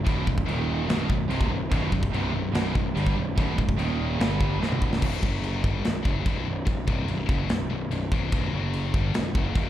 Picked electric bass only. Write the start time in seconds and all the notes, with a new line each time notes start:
0.07 B0
0.27 B0
0.47 D#1
0.88 B0
1.10 B0
1.29 C1
1.49 B0
1.72 B0
1.93 B0
2.12 C1
2.34 B0
2.54 B0
2.75 B0
2.95 G1
3.17 B0
3.38 B0
3.58 B0
3.78 D#1
4.20 G1
4.61 B0
5.02 B0
5.23 F#1
5.64 G1
5.85 B0
6.05 F#1
6.26 B0
6.48 B0
6.67 B0
6.88 C1
7.09 B0
7.29 F#1
7.50 B0
7.71 B0
7.91 B0
8.12 B0
8.33 B0
8.53 F#1
8.94 G1
9.14 B0
9.35 F#1
9.55 B0